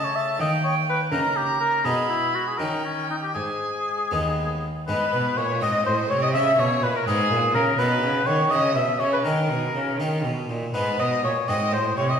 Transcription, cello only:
0, 0, Header, 1, 2, 480
1, 0, Start_track
1, 0, Key_signature, 5, "minor"
1, 0, Tempo, 485437
1, 392, Time_signature, 6, 3, 24, 8
1, 2316, Tempo, 505476
1, 5196, Tempo, 481541
1, 8076, Tempo, 493421
1, 11902, End_track
2, 0, Start_track
2, 0, Title_t, "Cello"
2, 0, Program_c, 0, 42
2, 0, Note_on_c, 0, 49, 77
2, 351, Note_off_c, 0, 49, 0
2, 389, Note_on_c, 0, 51, 72
2, 1067, Note_off_c, 0, 51, 0
2, 1105, Note_on_c, 0, 49, 74
2, 1786, Note_off_c, 0, 49, 0
2, 1826, Note_on_c, 0, 47, 75
2, 2513, Note_off_c, 0, 47, 0
2, 2556, Note_on_c, 0, 51, 70
2, 3239, Note_off_c, 0, 51, 0
2, 3274, Note_on_c, 0, 44, 63
2, 3963, Note_off_c, 0, 44, 0
2, 4001, Note_on_c, 0, 39, 61
2, 4690, Note_off_c, 0, 39, 0
2, 4728, Note_on_c, 0, 44, 66
2, 4804, Note_off_c, 0, 44, 0
2, 4958, Note_on_c, 0, 47, 64
2, 5183, Note_off_c, 0, 47, 0
2, 5189, Note_on_c, 0, 46, 67
2, 5432, Note_on_c, 0, 44, 74
2, 5447, Note_off_c, 0, 46, 0
2, 5669, Note_off_c, 0, 44, 0
2, 5675, Note_on_c, 0, 45, 69
2, 5914, Note_off_c, 0, 45, 0
2, 5921, Note_on_c, 0, 48, 70
2, 6159, Note_on_c, 0, 49, 80
2, 6174, Note_off_c, 0, 48, 0
2, 6389, Note_off_c, 0, 49, 0
2, 6395, Note_on_c, 0, 47, 68
2, 6629, Note_off_c, 0, 47, 0
2, 6635, Note_on_c, 0, 46, 65
2, 6715, Note_off_c, 0, 46, 0
2, 6880, Note_on_c, 0, 44, 84
2, 7116, Note_off_c, 0, 44, 0
2, 7122, Note_on_c, 0, 46, 66
2, 7353, Note_on_c, 0, 49, 75
2, 7368, Note_off_c, 0, 46, 0
2, 7584, Note_off_c, 0, 49, 0
2, 7590, Note_on_c, 0, 47, 77
2, 7824, Note_off_c, 0, 47, 0
2, 7830, Note_on_c, 0, 49, 72
2, 8069, Note_off_c, 0, 49, 0
2, 8076, Note_on_c, 0, 51, 67
2, 8305, Note_off_c, 0, 51, 0
2, 8311, Note_on_c, 0, 49, 73
2, 8549, Note_on_c, 0, 47, 66
2, 8564, Note_off_c, 0, 49, 0
2, 8787, Note_off_c, 0, 47, 0
2, 8793, Note_on_c, 0, 49, 61
2, 9031, Note_on_c, 0, 51, 67
2, 9046, Note_off_c, 0, 49, 0
2, 9273, Note_on_c, 0, 47, 61
2, 9288, Note_off_c, 0, 51, 0
2, 9509, Note_off_c, 0, 47, 0
2, 9515, Note_on_c, 0, 49, 61
2, 9757, Note_on_c, 0, 51, 70
2, 9772, Note_off_c, 0, 49, 0
2, 9994, Note_on_c, 0, 47, 61
2, 10009, Note_off_c, 0, 51, 0
2, 10233, Note_off_c, 0, 47, 0
2, 10239, Note_on_c, 0, 46, 60
2, 10476, Note_off_c, 0, 46, 0
2, 10482, Note_on_c, 0, 44, 71
2, 10720, Note_off_c, 0, 44, 0
2, 10725, Note_on_c, 0, 47, 68
2, 10960, Note_off_c, 0, 47, 0
2, 10966, Note_on_c, 0, 46, 62
2, 11044, Note_off_c, 0, 46, 0
2, 11205, Note_on_c, 0, 44, 72
2, 11441, Note_on_c, 0, 45, 67
2, 11455, Note_off_c, 0, 44, 0
2, 11672, Note_off_c, 0, 45, 0
2, 11678, Note_on_c, 0, 48, 71
2, 11902, Note_off_c, 0, 48, 0
2, 11902, End_track
0, 0, End_of_file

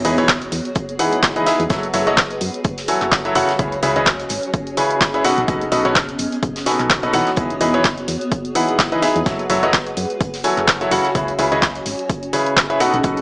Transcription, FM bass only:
0, 0, Header, 1, 2, 480
1, 0, Start_track
1, 0, Tempo, 472441
1, 1728, Time_signature, 4, 2, 24, 8
1, 13426, End_track
2, 0, Start_track
2, 0, Title_t, "FM bass"
2, 0, Program_c, 0, 39
2, 48, Note_on_c, 0, 28, 95
2, 477, Note_off_c, 0, 28, 0
2, 528, Note_on_c, 0, 40, 88
2, 622, Note_off_c, 0, 40, 0
2, 1623, Note_on_c, 0, 40, 92
2, 1696, Note_off_c, 0, 40, 0
2, 1729, Note_on_c, 0, 30, 102
2, 1904, Note_off_c, 0, 30, 0
2, 1968, Note_on_c, 0, 30, 103
2, 2397, Note_off_c, 0, 30, 0
2, 2449, Note_on_c, 0, 42, 85
2, 2542, Note_off_c, 0, 42, 0
2, 2689, Note_on_c, 0, 30, 100
2, 2782, Note_off_c, 0, 30, 0
2, 3063, Note_on_c, 0, 30, 91
2, 3357, Note_off_c, 0, 30, 0
2, 3409, Note_on_c, 0, 30, 102
2, 3502, Note_off_c, 0, 30, 0
2, 3649, Note_on_c, 0, 37, 101
2, 3824, Note_off_c, 0, 37, 0
2, 3889, Note_on_c, 0, 37, 99
2, 4317, Note_off_c, 0, 37, 0
2, 4369, Note_on_c, 0, 32, 90
2, 4462, Note_off_c, 0, 32, 0
2, 5463, Note_on_c, 0, 35, 95
2, 5536, Note_off_c, 0, 35, 0
2, 5569, Note_on_c, 0, 35, 96
2, 5744, Note_off_c, 0, 35, 0
2, 5810, Note_on_c, 0, 35, 103
2, 6238, Note_off_c, 0, 35, 0
2, 6290, Note_on_c, 0, 30, 88
2, 6383, Note_off_c, 0, 30, 0
2, 6529, Note_on_c, 0, 35, 97
2, 6622, Note_off_c, 0, 35, 0
2, 6903, Note_on_c, 0, 35, 90
2, 7197, Note_off_c, 0, 35, 0
2, 7249, Note_on_c, 0, 35, 100
2, 7342, Note_off_c, 0, 35, 0
2, 7490, Note_on_c, 0, 28, 100
2, 7665, Note_off_c, 0, 28, 0
2, 7729, Note_on_c, 0, 28, 99
2, 8157, Note_off_c, 0, 28, 0
2, 8209, Note_on_c, 0, 40, 87
2, 8302, Note_off_c, 0, 40, 0
2, 9303, Note_on_c, 0, 40, 96
2, 9376, Note_off_c, 0, 40, 0
2, 9409, Note_on_c, 0, 30, 103
2, 9584, Note_off_c, 0, 30, 0
2, 9649, Note_on_c, 0, 30, 102
2, 10077, Note_off_c, 0, 30, 0
2, 10129, Note_on_c, 0, 42, 89
2, 10222, Note_off_c, 0, 42, 0
2, 10369, Note_on_c, 0, 30, 95
2, 10462, Note_off_c, 0, 30, 0
2, 10743, Note_on_c, 0, 30, 93
2, 11037, Note_off_c, 0, 30, 0
2, 11089, Note_on_c, 0, 30, 94
2, 11182, Note_off_c, 0, 30, 0
2, 11329, Note_on_c, 0, 37, 104
2, 11504, Note_off_c, 0, 37, 0
2, 11569, Note_on_c, 0, 37, 99
2, 11997, Note_off_c, 0, 37, 0
2, 12049, Note_on_c, 0, 32, 89
2, 12142, Note_off_c, 0, 32, 0
2, 13143, Note_on_c, 0, 35, 95
2, 13216, Note_off_c, 0, 35, 0
2, 13249, Note_on_c, 0, 35, 102
2, 13424, Note_off_c, 0, 35, 0
2, 13426, End_track
0, 0, End_of_file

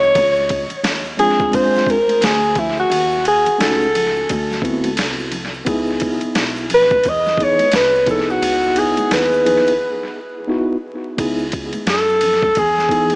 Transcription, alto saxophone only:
0, 0, Header, 1, 2, 480
1, 0, Start_track
1, 0, Key_signature, 4, "minor"
1, 0, Tempo, 689655
1, 106, Time_signature, 4, 2, 24, 8
1, 9155, End_track
2, 0, Start_track
2, 0, Title_t, "Alto saxophone"
2, 0, Program_c, 0, 65
2, 0, Note_on_c, 0, 73, 100
2, 568, Note_off_c, 0, 73, 0
2, 830, Note_on_c, 0, 68, 103
2, 1077, Note_on_c, 0, 72, 97
2, 1087, Note_off_c, 0, 68, 0
2, 1327, Note_on_c, 0, 70, 100
2, 1338, Note_off_c, 0, 72, 0
2, 1560, Note_on_c, 0, 68, 98
2, 1571, Note_off_c, 0, 70, 0
2, 1801, Note_on_c, 0, 64, 82
2, 1812, Note_off_c, 0, 68, 0
2, 1940, Note_off_c, 0, 64, 0
2, 1945, Note_on_c, 0, 66, 98
2, 2249, Note_off_c, 0, 66, 0
2, 2279, Note_on_c, 0, 68, 101
2, 2496, Note_off_c, 0, 68, 0
2, 2515, Note_on_c, 0, 69, 83
2, 3202, Note_off_c, 0, 69, 0
2, 4691, Note_on_c, 0, 71, 118
2, 4930, Note_on_c, 0, 75, 105
2, 4941, Note_off_c, 0, 71, 0
2, 5170, Note_on_c, 0, 73, 113
2, 5181, Note_off_c, 0, 75, 0
2, 5393, Note_off_c, 0, 73, 0
2, 5397, Note_on_c, 0, 71, 102
2, 5615, Note_off_c, 0, 71, 0
2, 5642, Note_on_c, 0, 69, 87
2, 5783, Note_on_c, 0, 66, 102
2, 5794, Note_off_c, 0, 69, 0
2, 6116, Note_on_c, 0, 68, 99
2, 6126, Note_off_c, 0, 66, 0
2, 6354, Note_on_c, 0, 71, 94
2, 6365, Note_off_c, 0, 68, 0
2, 7070, Note_off_c, 0, 71, 0
2, 8279, Note_on_c, 0, 69, 102
2, 8763, Note_on_c, 0, 68, 102
2, 8773, Note_off_c, 0, 69, 0
2, 9155, Note_off_c, 0, 68, 0
2, 9155, End_track
0, 0, End_of_file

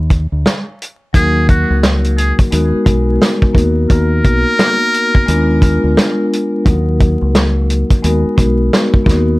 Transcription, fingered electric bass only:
0, 0, Header, 1, 3, 480
1, 0, Start_track
1, 0, Key_signature, -6, "minor"
1, 0, Tempo, 689655
1, 793, Time_signature, 4, 2, 24, 8
1, 6538, End_track
2, 0, Start_track
2, 0, Title_t, "Fingered electric bass"
2, 0, Program_c, 0, 33
2, 0, Note_on_c, 0, 39, 104
2, 179, Note_off_c, 0, 39, 0
2, 223, Note_on_c, 0, 38, 81
2, 305, Note_off_c, 0, 38, 0
2, 796, Note_on_c, 0, 39, 104
2, 1139, Note_off_c, 0, 39, 0
2, 1184, Note_on_c, 0, 37, 87
2, 1609, Note_off_c, 0, 37, 0
2, 1757, Note_on_c, 0, 39, 102
2, 1886, Note_off_c, 0, 39, 0
2, 1993, Note_on_c, 0, 35, 82
2, 2206, Note_off_c, 0, 35, 0
2, 2469, Note_on_c, 0, 39, 97
2, 2684, Note_off_c, 0, 39, 0
2, 2716, Note_on_c, 0, 39, 105
2, 2928, Note_off_c, 0, 39, 0
2, 2957, Note_on_c, 0, 35, 85
2, 3086, Note_off_c, 0, 35, 0
2, 3676, Note_on_c, 0, 39, 106
2, 4019, Note_off_c, 0, 39, 0
2, 4062, Note_on_c, 0, 38, 84
2, 4144, Note_off_c, 0, 38, 0
2, 4635, Note_on_c, 0, 39, 105
2, 4978, Note_off_c, 0, 39, 0
2, 5023, Note_on_c, 0, 37, 86
2, 5448, Note_off_c, 0, 37, 0
2, 5596, Note_on_c, 0, 39, 106
2, 5725, Note_off_c, 0, 39, 0
2, 5832, Note_on_c, 0, 35, 83
2, 6046, Note_off_c, 0, 35, 0
2, 6309, Note_on_c, 0, 39, 100
2, 6524, Note_off_c, 0, 39, 0
2, 6538, End_track
3, 0, Start_track
3, 0, Title_t, "Muted fingered electric bass strokes"
3, 1904, Note_on_c, 9, 29, 46
3, 1974, Note_off_c, 9, 29, 0
3, 5743, Note_on_c, 9, 29, 49
3, 5812, Note_off_c, 9, 29, 0
3, 6538, End_track
0, 0, End_of_file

